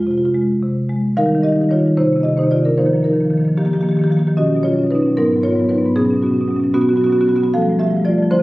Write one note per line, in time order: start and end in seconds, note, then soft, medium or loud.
0.00 1.13 F2 medium
0.00 0.24 G#3 soft
0.00 0.11 F4 soft
0.07 0.51 C3 soft
0.11 0.18 F4 soft
0.18 0.25 F4 soft
0.25 0.31 F4 soft
0.34 0.79 G#3 soft
0.62 1.06 C3 soft
0.89 1.17 G#3 soft
1.17 1.26 D#3 medium
1.17 1.26 G3 soft
1.17 1.24 D#4 soft
1.17 1.43 A#4 medium
1.17 1.43 F5 medium
1.24 1.35 D#3 soft
1.24 1.35 G3 soft
1.24 1.32 D#4 soft
1.32 1.44 D#3 soft
1.32 1.43 G3 soft
1.32 1.41 D#4 soft
1.41 1.52 D#3 soft
1.41 1.52 G3 soft
1.41 1.48 D#4 soft
1.41 1.69 G4 medium
1.41 1.69 D#5 medium
1.48 1.61 D#3 soft
1.48 1.60 G3 soft
1.48 1.56 D#4 soft
1.56 1.64 D#4 soft
1.60 1.70 D#3 soft
1.60 1.69 G3 soft
1.60 1.71 D#4 soft
1.69 1.79 D#3 soft
1.69 1.77 G3 soft
1.69 1.80 D#4 soft
1.69 1.97 F4 medium
1.69 1.97 C#5 medium
1.77 1.89 D#3 soft
1.77 1.86 G3 soft
1.77 1.87 D#4 soft
1.86 1.95 D#3 soft
1.86 1.95 G3 soft
1.86 1.95 D#4 soft
1.97 2.07 C3 medium
1.97 2.06 D#3 soft
1.97 2.05 A#3 soft
1.97 2.23 D#4 medium
1.97 2.23 C5 medium
2.05 2.16 C3 soft
2.05 2.17 D#3 soft
2.05 2.13 A#3 soft
2.13 2.26 C3 medium
2.13 2.26 D#3 soft
2.13 2.21 A#3 soft
2.21 2.29 A#3 soft
2.21 2.37 D#5 medium
2.25 2.37 C3 soft
2.25 2.34 D#3 soft
2.25 2.37 A#3 soft
2.25 2.37 G4 medium
2.34 2.46 C3 medium
2.34 2.42 D#3 soft
2.34 2.44 A#3 soft
2.34 2.51 C5 medium
2.39 2.52 D#3 soft
2.39 2.51 D#4 medium
2.44 2.56 C3 soft
2.44 2.51 A#3 soft
2.51 2.61 D#3 soft
2.51 2.59 A#3 soft
2.51 2.64 F4 medium
2.51 2.64 D5 medium
2.56 2.65 C3 medium
2.56 2.67 A#3 soft
2.61 2.75 D#3 soft
2.61 2.78 A#4 medium
2.65 2.75 C3 soft
2.65 2.75 A#3 soft
2.65 2.78 D4 medium
2.78 2.86 D#3 medium
2.78 2.85 F3 soft
2.78 2.86 A#3 medium
2.78 3.03 D#4 medium
2.78 3.03 C5 medium
2.85 2.96 D#3 soft
2.85 2.93 F3 soft
2.85 2.94 A#3 soft
2.93 3.05 D#3 soft
2.93 3.00 F3 soft
2.93 3.03 A#3 soft
3.00 3.08 F3 soft
3.00 3.12 A#3 soft
3.00 3.55 A#4 medium
3.05 3.13 D#3 soft
3.05 3.16 F3 soft
3.05 3.55 D#4 medium
3.12 3.22 D#3 soft
3.12 3.21 A#3 soft
3.16 3.25 F3 soft
3.21 3.30 D#3 soft
3.21 3.30 A#3 soft
3.25 3.33 F3 soft
3.30 3.39 D#3 soft
3.30 3.41 F3 soft
3.30 3.38 A#3 soft
3.38 3.48 D#3 soft
3.38 3.49 F3 soft
3.38 3.45 A#3 soft
3.45 3.55 D#3 soft
3.45 3.55 F3 soft
3.45 3.55 A#3 soft
3.57 3.67 D#3 medium
3.57 3.67 F3 medium
3.57 3.66 A#3 medium
3.57 3.65 G4 medium
3.65 3.75 D#3 medium
3.65 3.76 F3 soft
3.65 3.73 A#3 medium
3.65 3.73 G4 medium
3.73 3.83 D#3 medium
3.73 3.84 F3 soft
3.73 3.83 A#3 medium
3.73 3.81 G4 medium
3.81 3.92 D#3 medium
3.81 3.93 F3 soft
3.81 3.91 A#3 medium
3.81 3.89 G4 medium
3.89 4.02 D#3 medium
3.89 3.99 A#3 medium
3.89 3.97 G4 medium
3.93 4.03 F3 soft
3.93 4.04 G4 medium
3.99 4.10 D#3 medium
3.99 4.11 F3 soft
3.99 4.07 A#3 medium
4.04 4.17 A#3 soft
4.04 4.12 G4 medium
4.10 4.20 D#3 medium
4.10 4.20 F3 soft
4.10 4.19 G4 medium
4.17 4.28 D#3 medium
4.17 4.29 F3 soft
4.17 4.27 A#3 medium
4.17 4.27 G4 medium
4.27 4.35 D#3 medium
4.27 4.35 F3 soft
4.27 4.33 A#3 medium
4.27 4.34 G4 medium
4.37 4.47 B2 medium
4.37 4.46 F#3 soft
4.37 4.45 C#4 medium
4.37 4.62 F#4 medium
4.37 4.63 D#5 medium
4.45 4.56 B2 soft
4.45 4.55 F#3 soft
4.45 4.53 C#4 soft
4.53 4.66 B2 soft
4.53 4.65 F#3 soft
4.53 4.61 C#4 soft
4.61 4.73 F#3 soft
4.61 4.69 C#4 soft
4.61 4.89 F4 medium
4.61 4.89 C#5 medium
4.66 4.76 B2 soft
4.66 4.79 C#4 soft
4.73 4.85 B2 soft
4.73 4.83 F#3 soft
4.79 4.87 C#4 soft
4.83 4.95 B2 soft
4.83 4.92 F#3 soft
4.83 4.95 C#4 soft
4.91 5.00 F#3 soft
4.91 5.15 D#4 medium
4.91 5.16 B4 medium
4.95 5.06 B2 medium
4.95 5.02 C#4 soft
5.00 5.08 F#3 soft
5.00 5.14 C#4 soft
5.06 5.14 B2 soft
5.06 5.14 F#3 soft
5.17 5.27 G#2 medium
5.17 5.27 F#3 medium
5.17 5.25 B3 medium
5.17 5.42 D#4 medium
5.17 5.42 A#4 medium
5.25 5.37 G#2 medium
5.25 5.36 F#3 soft
5.25 5.33 B3 soft
5.33 5.46 G#2 medium
5.33 5.45 F#3 soft
5.33 5.42 B3 soft
5.42 5.55 G#2 medium
5.42 5.53 F#3 soft
5.42 5.51 B3 soft
5.42 5.68 F4 medium
5.42 5.68 C#5 medium
5.51 5.61 F#3 soft
5.51 5.60 B3 soft
5.55 5.65 G#2 medium
5.60 5.70 F#3 soft
5.60 5.69 B3 soft
5.65 5.76 G#2 medium
5.65 5.78 B3 soft
5.69 5.81 F#3 soft
5.69 5.95 D#4 soft
5.69 5.94 B4 medium
5.76 5.86 G#2 medium
5.76 5.86 B3 soft
5.81 5.93 F#3 soft
5.86 5.93 G#2 medium
5.86 5.93 B3 soft
5.96 6.05 B2 medium
5.96 6.05 F#3 medium
5.96 6.21 B3 medium
5.96 6.03 C#4 medium
5.96 6.21 G#4 medium
6.03 6.14 B2 soft
6.03 6.13 F#3 soft
6.03 6.10 C#4 soft
6.10 6.23 B2 medium
6.10 6.22 F#3 soft
6.10 6.18 C#4 medium
6.18 6.27 C#4 soft
6.22 6.32 B2 soft
6.22 6.30 F#3 soft
6.22 6.72 B3 medium
6.22 6.73 F#4 medium
6.27 6.39 F#3 soft
6.27 6.34 C#4 medium
6.32 6.41 B2 medium
6.32 6.41 C#4 soft
6.39 6.51 B2 soft
6.39 6.48 F#3 soft
6.39 6.49 C#4 medium
6.48 6.60 B2 medium
6.48 6.57 F#3 soft
6.48 6.56 C#4 soft
6.56 6.72 B2 soft
6.56 6.64 F#3 soft
6.56 6.64 C#4 soft
6.64 6.72 F#3 soft
6.64 6.72 C#4 soft
6.74 6.84 B2 medium
6.74 6.83 F#3 medium
6.74 6.82 B3 medium
6.74 6.82 C#4 medium
6.74 6.81 F#4 medium
6.81 6.94 B2 medium
6.81 6.93 F#3 soft
6.81 6.89 B3 medium
6.81 6.90 C#4 soft
6.81 6.89 F#4 medium
6.89 7.01 F#3 soft
6.89 6.96 B3 medium
6.89 6.98 C#4 medium
6.89 6.97 F#4 medium
6.94 7.06 B2 medium
6.94 7.04 B3 medium
6.94 7.07 C#4 medium
6.94 7.04 F#4 medium
7.01 7.10 F#3 soft
7.01 7.12 B3 medium
7.01 7.13 F#4 medium
7.06 7.15 B2 medium
7.06 7.18 F#3 soft
7.06 7.15 C#4 medium
7.12 7.26 B2 medium
7.12 7.21 B3 medium
7.12 7.22 C#4 medium
7.12 7.21 F#4 medium
7.18 7.27 F#3 soft
7.18 7.29 B3 medium
7.18 7.30 C#4 medium
7.18 7.29 F#4 medium
7.26 7.37 B2 medium
7.26 7.34 F#3 medium
7.26 7.36 B3 medium
7.26 7.38 C#4 soft
7.26 7.36 F#4 medium
7.34 7.51 B2 medium
7.34 7.42 F#3 soft
7.34 7.43 B3 medium
7.34 7.44 F#4 medium
7.38 7.46 C#4 medium
7.42 7.51 F#3 soft
7.42 7.49 B3 medium
7.42 7.51 C#4 medium
7.42 7.50 F#4 medium
7.54 7.62 F3 medium
7.54 7.62 G3 medium
7.54 7.61 A3 medium
7.54 7.78 A4 medium
7.54 7.79 F5 loud
7.61 7.71 F3 medium
7.61 7.72 G3 soft
7.61 7.69 A3 soft
7.69 7.79 F3 medium
7.69 7.81 G3 soft
7.69 7.78 A3 soft
7.78 7.88 F3 medium
7.78 7.90 G3 soft
7.78 7.87 A3 soft
7.78 8.04 G4 medium
7.78 8.04 E5 loud
7.87 7.97 F3 medium
7.87 8.00 G3 soft
7.87 7.95 A3 soft
7.95 8.05 F3 medium
7.95 8.02 A3 soft
8.00 8.09 G3 soft
8.00 8.11 A3 soft
8.05 8.14 F3 medium
8.05 8.18 G3 soft
8.05 8.30 F4 medium
8.05 8.30 D5 medium
8.11 8.22 F3 medium
8.11 8.18 A3 soft
8.18 8.29 G3 soft
8.18 8.29 A3 soft
8.22 8.29 F3 medium
8.31 8.39 D3 medium
8.31 8.39 F3 medium
8.31 8.40 C4 medium
8.31 8.43 E4 medium
8.31 8.43 C5 loud
8.39 8.43 D3 medium
8.39 8.43 F3 soft
8.39 8.43 C4 soft